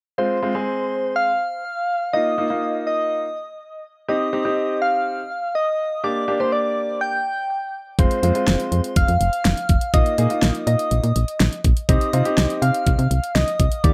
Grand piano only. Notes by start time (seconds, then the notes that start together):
0.18 G#3 C4 F4
0.43 G#3 C4 F4
0.55 G#3 C4 G#4
2.13 A#3 D#4 F4
2.38 A#3 D#4 F4
2.50 A#3 D#4 F4
4.08 C4 D#4 G4
4.33 C4 D#4 G4
4.45 C4 D#4 G4
6.04 A#3 D4 G4
6.28 A#3 D4 G4
6.40 A#3 D4 G4
7.99 G#3 C4 F4
8.23 G#3 C4 F4
8.35 G#3 C4 F4
9.94 A#3 D#4 F4
10.18 A#3 D#4 G#4
10.30 A#3 D#4 F4
11.89 C4 D#4 G4
12.13 C4 D#4 F4
12.25 C4 D#4 G4
13.84 A#3 D#4 G4